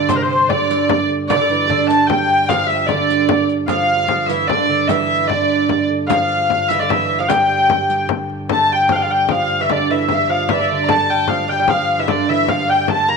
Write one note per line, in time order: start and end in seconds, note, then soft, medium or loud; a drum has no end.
0.00 3.68 G2 medium
0.00 3.67 D3 medium
0.00 0.12 D5 medium
0.08 0.24 C3 medium
0.08 0.16 C5 medium
0.08 0.23 C5 medium
0.08 riq medium
0.08 frame drum medium
0.16 0.23 A#4 medium
0.22 0.50 C3 medium
0.22 0.49 C5 medium
0.22 0.53 C5 medium
0.49 1.06 D3 medium
0.49 1.05 D5 medium
0.49 1.11 D5 medium
0.49 frame drum medium
0.70 riq medium
0.70 frame drum soft
0.89 frame drum medium
1.09 frame drum soft
1.28 1.34 D3 medium
1.28 1.67 D5 loud
1.28 1.67 D5 medium
1.28 riq medium
1.28 frame drum medium
1.35 1.40 D3 medium
1.41 1.50 D3 medium
1.51 1.70 E3 medium
1.67 1.90 D3 medium
1.67 1.87 D5 medium
1.67 1.89 D5 medium
1.67 frame drum medium
1.87 2.11 A3 medium
1.87 2.08 A5 medium
1.87 2.09 A5 medium
1.87 riq medium
2.07 2.49 G3 medium
2.07 2.49 G5 loud
2.07 2.50 G5 medium
2.07 frame drum medium
2.49 2.91 F3 medium
2.49 2.69 F5 loud
2.49 2.71 F5 medium
2.49 riq medium
2.49 frame drum medium
2.67 2.87 E5 loud
2.67 2.91 E5 medium
2.67 frame drum soft
2.87 3.46 D3 medium
2.87 3.44 D5 medium
2.87 3.50 D5 medium
2.87 riq soft
2.87 frame drum medium
3.10 riq soft
3.29 frame drum loud
3.49 riq soft
3.49 frame drum soft
3.67 8.49 G2 medium
3.67 8.48 D3 medium
3.67 4.08 F3 medium
3.67 4.26 F5 loud
3.67 4.33 F5 medium
3.67 riq medium
3.67 frame drum medium
4.08 4.30 F3 medium
4.08 frame drum medium
4.26 4.49 E3 medium
4.26 4.47 E5 medium
4.26 riq medium
4.26 frame drum soft
4.32 4.49 E5 medium
4.47 4.68 D3 medium
4.47 4.89 D5 loud
4.47 4.87 D5 medium
4.47 frame drum medium
4.70 4.88 D3 medium
4.88 5.31 E3 medium
4.88 5.27 E5 loud
4.88 riq medium
4.88 frame drum medium
4.92 5.28 E5 medium
5.27 5.86 D3 medium
5.27 5.85 D5 medium
5.27 frame drum medium
5.32 5.87 D5 medium
5.49 frame drum soft
5.69 frame drum medium
5.90 frame drum soft
6.07 6.72 F3 medium
6.07 6.68 F5 loud
6.07 riq medium
6.07 frame drum medium
6.12 6.73 F5 medium
6.50 frame drum medium
6.68 6.80 E3 medium
6.68 6.79 E5 medium
6.68 6.84 E5 medium
6.68 riq medium
6.79 6.90 D3 medium
6.79 6.89 D5 medium
6.79 6.93 D5 medium
6.89 7.18 E3 medium
6.89 7.19 E5 medium
6.89 7.23 E5 medium
6.89 frame drum medium
7.19 7.29 F3 medium
7.19 7.28 F5 medium
7.19 7.31 F5 medium
7.28 8.05 G3 medium
7.28 8.05 G5 medium
7.28 riq medium
7.28 frame drum medium
7.33 8.07 G5 medium
7.70 frame drum medium
7.90 riq soft
8.09 frame drum medium
8.30 frame drum soft
8.49 13.17 G2 medium
8.49 13.17 D3 medium
8.49 8.91 A3 medium
8.49 8.72 A5 medium
8.49 8.74 A5 medium
8.49 frame drum medium
8.70 8.90 G5 medium
8.70 8.92 G5 medium
8.70 frame drum soft
8.89 8.97 F3 medium
8.89 9.12 F5 medium
8.89 8.96 F5 medium
8.89 frame drum medium
8.96 9.00 G3 soft
8.96 9.02 G5 medium
9.00 9.10 F3 medium
9.00 9.11 F5 medium
9.11 9.30 G3 medium
9.11 9.31 G5 medium
9.11 9.30 G5 medium
9.29 9.61 F3 medium
9.29 9.63 F5 medium
9.29 9.61 F5 medium
9.29 frame drum medium
9.60 9.70 E3 medium
9.60 9.72 E5 medium
9.60 9.71 E5 medium
9.70 9.90 D3 medium
9.70 9.93 D5 medium
9.70 9.91 D5 medium
9.70 frame drum medium
9.90 10.09 E3 medium
9.90 10.11 E5 medium
9.90 10.10 E5 medium
9.90 frame drum soft
10.09 10.28 E3 medium
10.09 10.16 E5 medium
10.09 10.30 E5 medium
10.09 frame drum medium
10.15 10.21 F5 medium
10.20 10.29 E5 medium
10.29 10.50 F3 medium
10.29 10.48 F5 medium
10.29 10.50 F5 medium
10.49 10.59 E3 medium
10.49 10.58 E5 medium
10.49 10.59 E5 medium
10.49 frame drum medium
10.53 10.69 D5 medium
10.59 10.70 E3 medium
10.59 10.69 E5 medium
10.69 10.90 D3 medium
10.69 10.87 D5 medium
10.69 10.85 D5 medium
10.83 10.91 A#5 medium
10.89 11.08 A3 medium
10.89 11.10 A5 loud
10.89 11.32 A5 medium
10.89 frame drum medium
11.08 11.29 G3 medium
11.08 11.28 G5 medium
11.08 frame drum soft
11.28 11.48 F3 medium
11.28 11.49 F5 medium
11.28 frame drum medium
11.48 11.51 G3 medium
11.48 11.69 G5 medium
11.48 11.62 G5 medium
11.52 11.58 G3 medium
11.59 11.68 G3 medium
11.64 11.72 G5 medium
11.64 frame drum medium
11.69 11.99 F3 medium
11.69 11.99 F5 medium
11.69 12.00 F5 medium
11.99 12.07 E3 medium
11.99 12.09 E5 medium
11.99 12.12 E5 medium
12.08 12.29 D3 medium
12.08 12.29 D5 medium
12.08 12.30 D5 medium
12.08 frame drum medium
12.29 12.49 E3 medium
12.29 12.49 E5 medium
12.29 12.52 E5 medium
12.48 12.68 F3 medium
12.48 12.70 F5 medium
12.48 12.69 F5 medium
12.48 frame drum medium
12.68 12.87 G3 medium
12.68 12.90 G5 medium
12.68 12.88 G5 medium
12.88 13.08 A3 medium
12.88 13.08 A5 loud
12.88 13.12 A5 medium
12.88 frame drum medium
13.08 13.17 A#3 medium
13.08 13.17 A#5 loud
13.08 13.17 A#5 medium